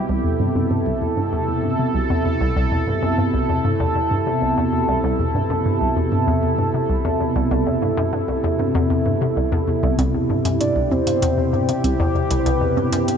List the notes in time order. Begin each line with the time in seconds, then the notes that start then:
Already playing: B2 C3 E4
0.09 C2 A4
0.24 E2
0.40 G2
0.55 F#2
0.71 G2
0.86 C2
1.02 E2
1.17 G2
1.33 E2
1.48 E2
1.64 G2
1.79 C3
1.95 C2
2.10 E2
2.25 E2
2.41 C2
2.56 C2
2.72 E2
2.87 G2
3.03 F#2
3.18 G2
3.34 C2
3.49 E2
3.65 G2
3.80 E2
3.96 E2
4.11 G2
4.27 C3
4.42 C2
4.57 E2
4.73 E2
4.88 C2
5.04 C2
5.19 E2
5.35 G2
5.50 F#2
5.66 G2
5.81 C2
5.97 E2
6.12 G2
6.28 E2
6.43 E2
6.58 G2
6.74 C3
6.89 C2
7.05 E2
7.20 E2
7.36 C2
7.51 C2
7.67 E2
7.82 G2
7.97 F#2
8.13 G2
8.28 C2
8.44 E2
8.59 G2
8.75 E2
8.90 E2
9.06 G2
9.21 C3
9.37 C2
9.52 E2
9.68 E2
9.83 C2
9.99 C2 G4, closed hi-hat, high conga
10.14 E2
10.30 G2
10.45 F#2, closed hi-hat
10.60 G2 D5, closed hi-hat
10.76 C2
10.91 E2 C5, high conga
11.07 G2, closed hi-hat
11.22 E2, closed hi-hat
11.38 E2
11.53 G2
11.69 C3, closed hi-hat
11.84 C2, closed hi-hat, high conga
12.00 E2
12.15 E2
12.31 C2, closed hi-hat
12.39 C5
12.46 C2 B4, closed hi-hat
12.61 E2
12.77 G2, high conga
12.93 F#2, closed hi-hat
13.08 G2, closed hi-hat